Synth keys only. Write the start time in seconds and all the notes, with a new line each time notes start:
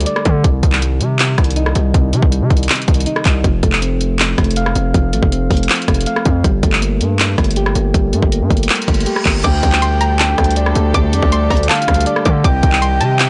Already playing: D3 G3 A3 D5
0.07 D5
0.25 A3
0.44 C3
0.63 D#3
0.82 G3
1.19 C3
1.38 D#3
1.57 D#4
1.76 G3
1.94 C3
2.13 D#3
2.32 G3
2.69 C3
2.88 D#3
3.07 D#4
3.26 G3
3.44 F3
3.63 A3
3.82 C4
4.19 F3
4.38 A3
4.57 F5
4.76 C4
4.94 F3
5.13 A3
5.32 C4
5.69 F3
5.88 A3
6.07 F5
6.26 C4
6.44 G3
6.63 A3
6.82 A#3
7.19 G3
7.38 A3
7.57 G4
7.76 A#3
7.94 G3
8.13 A3
8.32 A#3
8.69 G3
8.88 A3
9.07 G4
9.26 A#3
9.44 D3
9.63 G3
9.82 A3
10.19 D3
10.38 G3
10.57 D5
10.76 A3
10.94 D3
11.13 G3
11.32 A3
11.69 D3
11.88 G3
12.07 D5
12.26 A3
12.44 C3
12.63 D#3
12.82 G3
13.19 C3